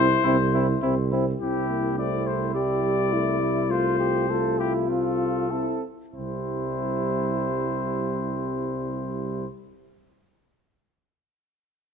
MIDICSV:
0, 0, Header, 1, 6, 480
1, 0, Start_track
1, 0, Key_signature, 0, "major"
1, 0, Tempo, 581959
1, 1162, Time_signature, 4, 2, 24, 8
1, 4036, Tempo, 636943
1, 9342, End_track
2, 0, Start_track
2, 0, Title_t, "Trumpet"
2, 0, Program_c, 0, 56
2, 0, Note_on_c, 0, 72, 109
2, 928, Note_off_c, 0, 72, 0
2, 1165, Note_on_c, 0, 67, 56
2, 1601, Note_off_c, 0, 67, 0
2, 1632, Note_on_c, 0, 74, 63
2, 1870, Note_on_c, 0, 72, 54
2, 1883, Note_off_c, 0, 74, 0
2, 2098, Note_off_c, 0, 72, 0
2, 2103, Note_on_c, 0, 74, 73
2, 3057, Note_on_c, 0, 72, 70
2, 3069, Note_off_c, 0, 74, 0
2, 3780, Note_off_c, 0, 72, 0
2, 3785, Note_on_c, 0, 67, 65
2, 3897, Note_off_c, 0, 67, 0
2, 4046, Note_on_c, 0, 69, 55
2, 4734, Note_off_c, 0, 69, 0
2, 4980, Note_on_c, 0, 72, 48
2, 7483, Note_off_c, 0, 72, 0
2, 9342, End_track
3, 0, Start_track
3, 0, Title_t, "Trumpet"
3, 0, Program_c, 1, 56
3, 193, Note_on_c, 1, 64, 64
3, 302, Note_off_c, 1, 64, 0
3, 441, Note_on_c, 1, 64, 60
3, 549, Note_off_c, 1, 64, 0
3, 675, Note_on_c, 1, 64, 59
3, 785, Note_off_c, 1, 64, 0
3, 919, Note_on_c, 1, 64, 54
3, 1028, Note_off_c, 1, 64, 0
3, 1162, Note_on_c, 1, 64, 45
3, 1600, Note_off_c, 1, 64, 0
3, 1633, Note_on_c, 1, 64, 44
3, 3052, Note_on_c, 1, 65, 57
3, 3065, Note_off_c, 1, 64, 0
3, 3292, Note_off_c, 1, 65, 0
3, 3297, Note_on_c, 1, 67, 50
3, 3548, Note_on_c, 1, 69, 51
3, 3560, Note_off_c, 1, 67, 0
3, 3792, Note_on_c, 1, 64, 52
3, 3805, Note_off_c, 1, 69, 0
3, 4036, Note_on_c, 1, 65, 46
3, 4047, Note_off_c, 1, 64, 0
3, 4500, Note_on_c, 1, 69, 41
3, 4511, Note_off_c, 1, 65, 0
3, 4742, Note_off_c, 1, 69, 0
3, 4977, Note_on_c, 1, 64, 42
3, 7482, Note_off_c, 1, 64, 0
3, 9342, End_track
4, 0, Start_track
4, 0, Title_t, "French horn"
4, 0, Program_c, 2, 60
4, 199, Note_on_c, 2, 60, 74
4, 306, Note_off_c, 2, 60, 0
4, 444, Note_on_c, 2, 60, 54
4, 552, Note_off_c, 2, 60, 0
4, 685, Note_on_c, 2, 60, 57
4, 793, Note_off_c, 2, 60, 0
4, 929, Note_on_c, 2, 60, 57
4, 1036, Note_off_c, 2, 60, 0
4, 1158, Note_on_c, 2, 64, 37
4, 1635, Note_on_c, 2, 60, 37
4, 1647, Note_off_c, 2, 64, 0
4, 2099, Note_off_c, 2, 60, 0
4, 2104, Note_on_c, 2, 67, 44
4, 2578, Note_on_c, 2, 64, 44
4, 2591, Note_off_c, 2, 67, 0
4, 3051, Note_on_c, 2, 65, 50
4, 3063, Note_off_c, 2, 64, 0
4, 3532, Note_off_c, 2, 65, 0
4, 3537, Note_on_c, 2, 65, 50
4, 4498, Note_on_c, 2, 64, 38
4, 4509, Note_off_c, 2, 65, 0
4, 4741, Note_off_c, 2, 64, 0
4, 4982, Note_on_c, 2, 60, 34
4, 7484, Note_off_c, 2, 60, 0
4, 9342, End_track
5, 0, Start_track
5, 0, Title_t, "Trombone"
5, 0, Program_c, 3, 57
5, 0, Note_on_c, 3, 64, 82
5, 886, Note_off_c, 3, 64, 0
5, 1170, Note_on_c, 3, 60, 41
5, 1385, Note_off_c, 3, 60, 0
5, 1394, Note_on_c, 3, 58, 34
5, 1631, Note_on_c, 3, 57, 39
5, 1643, Note_off_c, 3, 58, 0
5, 2093, Note_on_c, 3, 55, 42
5, 2105, Note_off_c, 3, 57, 0
5, 2326, Note_off_c, 3, 55, 0
5, 2331, Note_on_c, 3, 55, 47
5, 2574, Note_on_c, 3, 57, 49
5, 2586, Note_off_c, 3, 55, 0
5, 2811, Note_on_c, 3, 55, 44
5, 2823, Note_off_c, 3, 57, 0
5, 3052, Note_on_c, 3, 57, 47
5, 3064, Note_off_c, 3, 55, 0
5, 3534, Note_off_c, 3, 57, 0
5, 3539, Note_on_c, 3, 57, 49
5, 4027, Note_on_c, 3, 60, 47
5, 4039, Note_off_c, 3, 57, 0
5, 4497, Note_off_c, 3, 60, 0
5, 4500, Note_on_c, 3, 60, 38
5, 4737, Note_off_c, 3, 60, 0
5, 4978, Note_on_c, 3, 55, 39
5, 7482, Note_off_c, 3, 55, 0
5, 9342, End_track
6, 0, Start_track
6, 0, Title_t, "Tuba"
6, 0, Program_c, 4, 58
6, 0, Note_on_c, 4, 36, 75
6, 138, Note_off_c, 4, 36, 0
6, 196, Note_on_c, 4, 36, 83
6, 622, Note_off_c, 4, 36, 0
6, 676, Note_on_c, 4, 36, 70
6, 1105, Note_off_c, 4, 36, 0
6, 1162, Note_on_c, 4, 36, 49
6, 4712, Note_off_c, 4, 36, 0
6, 4986, Note_on_c, 4, 36, 40
6, 7487, Note_off_c, 4, 36, 0
6, 9342, End_track
0, 0, End_of_file